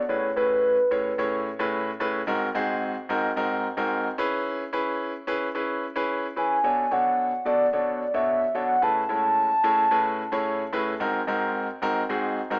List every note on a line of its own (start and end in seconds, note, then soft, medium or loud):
0.00 0.10 D5 medium
0.09 0.29 A2 medium
0.09 0.29 C#4 medium
0.09 0.29 E4 medium
0.09 0.29 G#4 medium
0.09 0.29 B4 medium
0.09 0.36 C#5 loud
0.36 0.75 A2 medium
0.36 0.76 C#4 medium
0.36 0.76 E4 medium
0.36 0.76 G#4 medium
0.36 1.96 B4 medium
0.36 0.76 B4 medium
0.91 1.11 A2 medium
0.91 1.11 C#4 medium
0.91 1.11 E4 medium
0.91 1.11 G#4 medium
0.91 1.11 C#5 medium
1.18 1.48 A2 medium
1.18 1.48 C#4 medium
1.18 1.48 E4 medium
1.18 1.48 G#4 medium
1.18 1.48 C#5 medium
1.59 1.89 A2 medium
1.59 1.89 C#4 medium
1.59 1.89 E4 medium
1.59 1.89 G#4 medium
1.59 1.89 B4 medium
2.00 2.20 A2 medium
2.00 2.20 C#4 medium
2.00 2.20 E4 medium
2.00 2.20 G#4 medium
2.00 2.20 B4 medium
2.27 2.47 G#2 medium
2.27 2.47 C4 medium
2.27 2.47 D#4 medium
2.27 2.47 F#4 medium
2.27 2.47 A#4 loud
2.55 2.94 G#2 medium
2.55 2.94 C4 medium
2.55 2.94 D#4 medium
2.55 2.94 F#4 medium
2.55 2.94 G#4 loud
3.09 3.29 G#2 medium
3.09 3.29 C4 medium
3.09 3.29 D#4 medium
3.09 3.29 F#4 medium
3.09 3.29 A#4 medium
3.36 3.66 G#2 medium
3.36 3.66 C4 medium
3.36 3.66 D#4 medium
3.36 3.66 F#4 medium
3.36 3.66 A#4 medium
3.77 4.07 G#2 medium
3.77 4.07 C4 medium
3.77 4.07 D#4 medium
3.77 4.07 F#4 medium
3.77 4.07 A#4 medium
4.18 4.62 C#4 medium
4.18 4.62 E4 medium
4.18 4.62 G#4 medium
4.18 4.63 B4 medium
4.73 5.12 C#4 medium
4.73 5.12 E4 medium
4.73 5.12 G#4 medium
4.73 5.12 B4 medium
5.27 5.47 C#4 medium
5.27 5.47 E4 medium
5.27 5.47 G#4 medium
5.27 5.47 B4 loud
5.55 5.84 C#4 medium
5.55 5.84 E4 medium
5.55 5.84 G#4 medium
5.55 5.84 B4 medium
5.96 6.25 C#4 medium
5.96 6.25 E4 medium
5.96 6.25 G#4 medium
5.96 6.25 B4 medium
6.36 6.56 C#4 medium
6.36 6.56 E4 medium
6.36 6.56 G#4 medium
6.36 6.56 B4 medium
6.36 6.94 G#5 medium
6.64 6.83 B2 medium
6.64 6.83 D4 medium
6.64 6.84 F#4 medium
6.64 6.84 A4 medium
6.64 6.84 C#5 medium
6.91 7.30 B2 medium
6.91 7.30 D4 medium
6.91 7.30 F#4 medium
6.91 7.30 A4 medium
6.91 7.30 C#5 medium
6.91 7.49 F#5 medium
7.45 7.65 B2 medium
7.45 7.65 D4 medium
7.45 7.65 F#4 medium
7.45 7.65 A4 medium
7.45 7.66 D5 medium
7.45 7.74 D5 medium
7.73 8.02 B2 medium
7.73 8.02 D4 medium
7.73 8.02 F#4 medium
7.73 8.02 A4 medium
7.73 8.03 C#5 medium
7.73 8.16 D5 medium
8.14 8.43 B2 medium
8.14 8.43 D4 medium
8.14 8.43 F#4 medium
8.14 8.43 A4 medium
8.14 8.44 C#5 medium
8.14 8.57 E5 loud
8.55 8.74 B2 medium
8.55 8.74 D4 medium
8.55 8.74 F#4 medium
8.55 8.75 A4 medium
8.55 8.75 C#5 medium
8.55 8.85 F#5 loud
8.82 9.02 A2 medium
8.82 9.02 C#4 medium
8.82 9.02 E4 medium
8.82 9.02 G#4 medium
8.82 9.02 B4 medium
8.82 10.74 A5 loud
9.09 9.48 A2 medium
9.09 9.48 G#3 medium
9.09 9.48 C#4 medium
9.09 9.48 E4 medium
9.09 9.49 C#5 medium
9.64 9.83 A2 medium
9.64 9.83 C#4 medium
9.64 9.84 E4 medium
9.64 9.84 G#4 medium
9.64 9.84 C#5 medium
9.91 10.20 A2 medium
9.91 10.21 C#4 medium
9.91 10.21 E4 medium
9.91 10.21 G#4 medium
9.91 10.21 B4 medium
10.32 10.61 A2 medium
10.32 10.61 C#4 medium
10.32 10.61 E4 medium
10.32 10.62 G#4 medium
10.32 10.62 C#5 medium
10.73 10.92 A2 medium
10.73 10.92 C#4 medium
10.73 10.93 E4 medium
10.73 10.93 G#4 medium
10.73 10.93 B4 medium
11.00 11.20 G#2 medium
11.00 11.20 C4 medium
11.00 11.20 D#4 medium
11.00 11.20 F#4 medium
11.00 11.20 A#4 medium
11.27 11.66 G#2 medium
11.27 11.67 C4 medium
11.27 11.67 D#4 medium
11.27 11.67 F#4 medium
11.27 11.67 A#4 medium
11.82 12.02 G#2 medium
11.82 12.02 C4 medium
11.82 12.02 D#4 medium
11.82 12.02 F#4 medium
11.82 12.02 A#4 loud
12.09 12.39 G#2 medium
12.09 12.39 C4 medium
12.09 12.39 D#4 medium
12.09 12.39 F#4 medium
12.09 12.39 G#4 medium
12.50 12.59 G#2 medium
12.50 12.59 C4 medium
12.50 12.59 D#4 medium
12.50 12.59 F#4 medium
12.50 12.59 A#4 medium